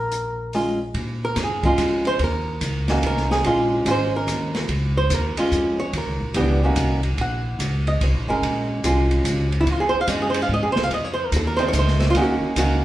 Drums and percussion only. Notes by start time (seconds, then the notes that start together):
0.12 closed hi-hat
0.53 open hi-hat
0.94 kick, ride
1.36 kick, snare, hi-hat pedal, ride
1.63 kick, ride
1.78 kick, hi-hat pedal, ride
2.05 ride
2.19 kick, ride
2.61 kick, hi-hat pedal, ride
2.88 snare, ride
3.03 kick, ride
3.17 snare
3.31 snare
3.44 kick, ride
3.86 kick, hi-hat pedal, ride
4.28 kick, hi-hat pedal, ride
4.55 snare, ride
4.69 kick, ride
5.10 kick, hi-hat pedal, ride
5.37 ride
5.51 kick, hi-hat pedal
5.93 kick, ride
6.34 kick, hi-hat pedal, ride
6.76 kick, hi-hat pedal, ride
7.03 ride
7.18 kick, ride
7.59 kick, hi-hat pedal, ride
7.87 ride
8.01 kick, ride
8.43 kick, ride
8.84 kick, hi-hat pedal, ride
9.11 ride
9.25 kick, hi-hat pedal, ride
9.52 ride
9.67 kick, ride
10.07 kick, hi-hat pedal, ride
10.34 ride
10.49 kick
10.76 snare
10.91 kick, ride
11.32 kick, hi-hat pedal, ride
11.59 ride
11.73 kick, hi-hat pedal, ride
11.88 snare
12.00 snare, ride
12.15 kick, ride
12.56 kick, hi-hat pedal, ride